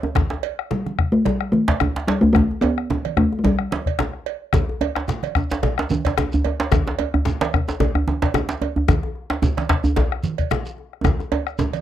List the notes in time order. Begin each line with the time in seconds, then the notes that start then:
0.03 bombo rim, djembe tone
0.15 bombo rim, bombo low, djembe slap, high conga, low conga, djembe bass
0.30 djembe slap, djembe tone
0.43 cowbell, djembe slap
0.59 bombo rim
0.71 G3, bombo rim, djembe slap, low conga
0.86 bombo rim, high conga
0.99 bombo rim, bombo low
1.12 A3, djembe tone
1.25 G3, cowbell, djembe slap, high conga, low conga, djembe bass
1.41 bombo rim
1.52 A3, high conga
1.68 bombo low, cowbell, djembe slap
1.80 bombo rim, djembe slap, djembe tone, low conga, djembe bass
1.96 djembe slap, high conga
2.07 G3, cowbell, djembe slap
2.21 A3, bombo rim, djembe bass
2.33 A3, bombo rim, bombo low, djembe slap, djembe tone, high conga, low conga, djembe bass
2.51 djembe tone
2.61 B3, bombo rim, cowbell, djembe tone
2.78 bombo rim, high conga
2.90 djembe slap, djembe tone, low conga
3.05 bombo rim, cowbell, djembe slap, high conga
3.17 A3, bombo rim, bombo low, djembe tone
3.33 djembe slap, djembe tone, high conga
3.39 A3
3.44 G3, bombo rim, cowbell, djembe slap, djembe tone, djembe bass, low conga
3.59 bombo rim, high conga
3.71 bombo rim, djembe slap, high conga
3.86 bombo low, cowbell
3.99 bombo rim, djembe slap, high conga, djembe tone, low conga
4.13 bombo rim
4.26 cowbell
4.53 bombo rim, bombo low, djembe slap, high conga, low conga, djembe bass, shekere
4.69 djembe tone
4.81 cowbell, djembe slap, djembe tone
4.95 bombo rim, djembe slap
5.08 bombo rim, djembe slap, low conga, shekere
5.23 bombo rim, cowbell, high conga, shekere
5.35 bombo rim, bombo low, djembe tone, shekere
5.51 djembe slap, djembe tone, shekere
5.63 cowbell, djembe slap, high conga, low conga, djembe bass
5.78 bombo rim, djembe slap
5.90 high conga, djembe tone, shekere
6.05 bombo low, cowbell, djembe slap, shekere
6.18 bombo rim, djembe slap, djembe tone, low conga, shekere
6.32 djembe slap, high conga, djembe bass, shekere
6.45 cowbell, djembe slap, djembe tone
6.60 djembe slap
6.72 bombo rim, bombo low, djembe slap, high conga, djembe tone, djembe bass, low conga, shekere
6.87 djembe slap, djembe tone
6.99 cowbell, djembe slap, djembe tone
7.14 bombo rim, djembe bass
7.25 bombo rim, djembe slap, djembe tone, low conga, shekere
7.41 bombo rim, cowbell, djembe slap, high conga, shekere
7.53 bombo rim, bombo low, djembe tone, shekere
7.68 djembe slap, djembe tone, shekere
7.80 cowbell, djembe slap, djembe tone, high conga, djembe bass, low conga
7.95 bombo rim, djembe bass
8.08 djembe tone, high conga
8.22 bombo low, cowbell, djembe slap, shekere
8.34 bombo rim, djembe slap, djembe tone, low conga, shekere
8.49 djembe slap, high conga, shekere
8.61 cowbell, djembe slap, djembe tone
8.76 bombo rim, djembe bass
8.88 bombo rim, bombo low, djembe slap, djembe tone, high conga, djembe bass, low conga, shekere
9.03 djembe tone
9.15 djembe slap
9.30 bombo rim, djembe slap
9.42 bombo rim, djembe slap, djembe bass, low conga, shekere
9.57 bombo rim, cowbell, djembe slap, high conga, shekere
9.69 bombo rim, bombo low, djembe slap, shekere
9.84 djembe tone, djembe bass, shekere
9.96 cowbell, djembe slap, high conga, low conga, djembe bass
10.12 bombo rim
10.23 high conga, shekere
10.38 bombo low, cowbell, shekere
10.50 bombo rim, djembe slap, djembe tone, low conga, shekere
10.66 djembe slap, high conga, shekere
10.78 djembe slap
10.93 bombo rim
11.04 bombo rim, bombo low, djembe slap, djembe tone, high conga, low conga, djembe bass, shekere
11.19 bombo rim, djembe slap, djembe tone, shekere
11.32 cowbell, djembe tone
11.47 bombo rim, djembe slap, shekere
11.59 djembe slap, djembe tone, low conga, shekere
11.73 cowbell, djembe slap, high conga, shekere